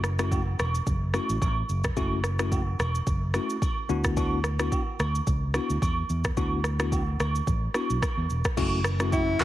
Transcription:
0.00 0.55 F#1 loud
0.00 cross-stick medium
0.04 shaker medium
0.19 0.39 A3 medium
0.19 0.39 C#4 medium
0.19 0.39 E4 medium
0.19 0.39 F#4 medium
0.19 cross-stick loud
0.19 high agogo medium
0.19 shaker medium
0.32 kick loud
0.32 low woodblock medium
0.32 shaker medium
0.59 0.79 E1 medium
0.59 cross-stick medium
0.59 high agogo medium
0.59 shaker soft
0.75 shaker medium
0.87 1.17 F#1 medium
0.87 kick medium
0.87 shaker medium
1.14 1.35 A3 medium
1.14 1.36 C#4 medium
1.14 1.36 E4 medium
1.14 1.36 F#4 medium
1.14 cross-stick medium
1.14 high agogo medium
1.14 shaker medium
1.29 1.38 A1 medium
1.29 shaker medium
1.42 1.61 A1 medium
1.42 kick loud
1.42 high agogo medium
1.42 shaker medium
1.69 1.89 F#1 medium
1.69 shaker medium
1.84 kick medium
1.84 cross-stick loud
1.84 shaker medium
1.97 2.75 F#1 loud
1.97 2.18 A3 medium
1.97 2.18 C#4 medium
1.97 2.18 E4 medium
1.97 2.18 F#4 loud
1.97 kick loud
1.97 high agogo medium
1.97 shaker medium
2.24 cross-stick medium
2.24 shaker medium
2.39 2.59 A3 medium
2.39 2.59 C#4 medium
2.39 2.59 E4 medium
2.39 2.60 F#4 medium
2.39 cross-stick loud
2.39 high agogo medium
2.39 shaker medium
2.52 kick medium
2.52 low woodblock medium
2.52 shaker medium
2.79 2.99 E1 medium
2.79 cross-stick medium
2.79 high agogo medium
2.79 shaker soft
2.95 shaker medium
3.07 3.37 F#1 medium
3.07 kick loud
3.07 shaker medium
3.34 3.56 A3 medium
3.34 3.56 C#4 medium
3.34 3.56 E4 medium
3.34 3.56 F#4 medium
3.34 cross-stick medium
3.34 high agogo medium
3.34 shaker medium
3.50 shaker medium
3.62 kick loud
3.62 high agogo medium
3.62 shaker medium
3.89 4.68 D2 loud
3.89 4.15 B3 medium
3.89 4.15 D4 medium
3.89 4.15 E4 medium
3.89 4.15 F#4 loud
3.89 shaker medium
4.04 kick medium
4.04 cross-stick loud
4.04 shaker medium
4.17 4.38 B3 medium
4.17 4.38 D4 medium
4.17 4.38 E4 medium
4.17 4.38 F#4 loud
4.17 kick loud
4.17 high agogo medium
4.17 shaker medium
4.44 cross-stick medium
4.44 shaker medium
4.59 4.79 B3 medium
4.59 4.79 D4 medium
4.59 4.80 E4 medium
4.59 4.80 F#4 medium
4.59 cross-stick loud
4.59 high agogo medium
4.59 shaker medium
4.72 kick medium
4.72 low woodblock medium
4.72 shaker medium
5.00 5.19 D2 medium
5.00 cross-stick medium
5.00 high agogo medium
5.00 shaker soft
5.15 shaker medium
5.27 5.57 C#2 medium
5.27 kick medium
5.27 shaker medium
5.54 5.76 B3 medium
5.54 5.76 D4 medium
5.54 5.76 E4 medium
5.54 5.76 F#4 medium
5.54 cross-stick medium
5.54 high agogo medium
5.54 shaker medium
5.70 5.79 D2 medium
5.70 shaker medium
5.82 6.02 E2 medium
5.82 kick loud
5.82 high agogo medium
5.82 shaker medium
6.10 6.29 E2 medium
6.10 shaker medium
6.24 kick medium
6.24 cross-stick loud
6.24 shaker medium
6.37 7.16 D2 loud
6.37 6.58 B3 medium
6.37 6.58 D4 medium
6.37 6.58 E4 medium
6.37 6.59 F#4 loud
6.37 kick loud
6.37 high agogo medium
6.37 shaker medium
6.64 cross-stick medium
6.64 shaker medium
6.79 7.00 B3 medium
6.79 7.00 D4 medium
6.79 7.00 E4 medium
6.79 7.00 F#4 medium
6.79 cross-stick loud
6.79 high agogo medium
6.79 shaker medium
6.92 kick medium
6.92 low woodblock medium
6.92 shaker medium
7.20 7.39 D2 medium
7.20 cross-stick medium
7.20 high agogo medium
7.20 shaker soft
7.35 shaker medium
7.47 7.67 A1 medium
7.47 kick loud
7.47 shaker medium
7.74 7.96 B3 medium
7.74 7.96 D4 medium
7.74 7.96 E4 medium
7.74 7.96 F#4 medium
7.74 cross-stick medium
7.74 high agogo medium
7.74 shaker medium
7.90 7.99 B1 medium
7.90 shaker medium
8.02 kick loud
8.02 cross-stick medium
8.02 high agogo medium
8.02 shaker medium
8.17 8.26 E2 medium
8.30 8.41 E1 medium
8.30 shaker medium
8.45 kick medium
8.45 cross-stick loud
8.45 shaker medium
8.57 9.36 F#1 loud
8.57 9.44 E3 medium
8.57 8.78 A3 medium
8.57 9.44 A3 medium
8.57 8.79 C#4 medium
8.57 9.44 C#4 medium
8.57 8.79 E4 medium
8.57 9.44 F#4 medium
8.57 8.79 F#4 loud
8.57 kick loud
8.57 crash loud
8.57 high agogo medium
8.57 shaker medium
8.84 cross-stick loud
8.84 shaker medium
8.99 9.20 A3 medium
8.99 9.20 C#4 medium
8.99 9.20 E4 medium
8.99 9.20 F#4 medium
8.99 cross-stick loud
8.99 high agogo medium
8.99 shaker medium
9.12 9.42 E4 medium
9.12 kick loud
9.12 low woodblock medium
9.12 shaker medium
9.40 9.44 E1 medium
9.40 9.44 F#4 medium
9.40 cross-stick medium
9.40 clap medium
9.40 high agogo medium
9.40 shaker soft

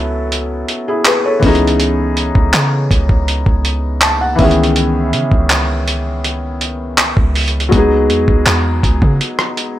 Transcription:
0.00 0.64 C#2 loud
0.00 1.37 F#3 medium
0.00 1.38 B3 medium
0.00 1.39 C#4 medium
0.00 0.66 E4 medium
0.00 0.67 A4 medium
0.32 closed hi-hat medium
0.68 closed hi-hat medium
0.88 1.05 E4 medium
0.88 1.05 G#4 medium
1.05 1.24 G#4 medium
1.05 1.24 B4 medium
1.05 clap loud
1.05 closed hi-hat medium
1.25 1.60 A4 medium
1.25 1.60 C#5 medium
1.39 2.32 C#2 loud
1.39 4.33 E3 medium
1.39 4.34 B3 medium
1.39 kick loud
1.39 closed hi-hat medium
1.39 open hi-hat medium
1.44 4.35 C#4 medium
1.44 4.37 D#4 medium
1.48 4.38 G#4 medium
1.55 closed hi-hat medium
1.67 closed hi-hat medium
1.80 closed hi-hat medium
2.17 closed hi-hat medium
2.35 2.53 C#2 loud
2.35 kick medium
2.53 2.89 C#3 loud
2.53 clap loud
2.53 closed hi-hat medium
2.91 3.09 C#2 loud
2.91 kick loud
2.91 closed hi-hat medium
3.09 3.45 C#2 loud
3.09 kick medium
3.28 closed hi-hat medium
3.46 4.35 C#2 loud
3.46 kick medium
3.65 closed hi-hat medium
4.01 4.20 A5 medium
4.01 clap loud
4.01 closed hi-hat medium
4.21 4.38 F#5 medium
4.35 5.14 C#2 loud
4.35 7.29 E3 medium
4.35 7.30 B3 medium
4.35 kick loud
4.35 closed hi-hat medium
4.39 7.33 D#3 medium
4.39 7.32 C#4 medium
4.39 4.74 E5 medium
4.39 open hi-hat medium
4.44 7.34 G#4 medium
4.51 closed hi-hat medium
4.63 closed hi-hat medium
4.76 closed hi-hat medium
5.13 5.30 C#3 loud
5.13 closed hi-hat medium
5.32 7.13 C#2 loud
5.32 kick loud
5.50 clap loud
5.50 closed hi-hat medium
5.88 closed hi-hat medium
6.24 closed hi-hat medium
6.61 closed hi-hat medium
6.98 clap loud
6.98 closed hi-hat medium
7.17 7.70 C#2 loud
7.17 kick loud
7.35 closed hi-hat medium
7.35 open hi-hat medium
7.48 closed hi-hat medium
7.60 closed hi-hat medium
7.69 8.11 C#2 loud
7.69 9.79 F#3 medium
7.69 9.79 G#3 medium
7.69 kick loud
7.69 closed hi-hat medium
7.73 9.79 B3 medium
7.73 9.79 D#4 medium
7.78 9.79 G#4 medium
8.09 8.27 E2 loud
8.09 closed hi-hat medium
8.28 8.46 C#2 loud
8.28 kick loud
8.46 8.82 E2 loud
8.46 clap loud
8.46 closed hi-hat medium
8.83 9.01 C#2 loud
8.83 kick loud
8.83 closed hi-hat medium
9.02 9.20 C#3 loud
9.02 kick medium
9.21 closed hi-hat medium
9.39 cross-stick loud
9.57 closed hi-hat medium

